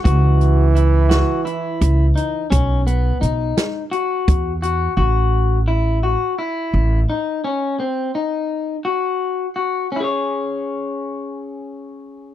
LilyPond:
<<
  \new Staff \with { instrumentName = "Clean electric guitar" } { \time 7/8 \key cis \minor \tempo 4 = 85 fis'4 e'8 fis'8 e'4 dis'8 | cis'8 b8 dis'4 fis'4 fis'8 | fis'4 e'8 fis'8 e'4 dis'8 | cis'8 c'8 ees'4 ges'4 ges'8 |
<cis' e' gis' cis''>2.~ <cis' e' gis' cis''>8 | }
  \new Staff \with { instrumentName = "Trombone" } { \clef bass \time 7/8 \key cis \minor e2.~ e8 | r2. r8 | r2. r8 | r2. r8 |
r2. r8 | }
  \new Staff \with { instrumentName = "Upright bass" } { \clef bass \time 7/8 \key cis \minor cis,2 r8 cis,8 r8 | b,,4 b,,8 r4 e,4 | a,,2 r8 a,,8 r8 | r2. r8 |
r2. r8 | }
  \new DrumStaff \with { instrumentName = "Drums" } \drummode { \time 7/8 <hh bd>8 hh8 hh8 <hh sn>8 hh8 <hh bd>8 hh8 | <hh bd>8 hh8 hh8 <hh sn>8 hh8 <hh bd>8 hh8 | r4. r4 r4 | r4. r4 r4 |
r4. r4 r4 | }
>>